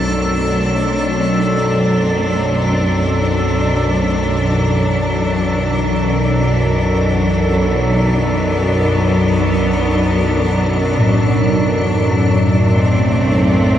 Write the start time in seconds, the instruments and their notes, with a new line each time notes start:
Already playing: synth drone B1 F#2, cello section F#3 A3 C4 D4, ambient pad A4
4.41 cello section E3
4.45 ambient pad A4
7.45 cello section B3
10.99 singing bowl A2
12.32 cello section A3
12.65 cello section C4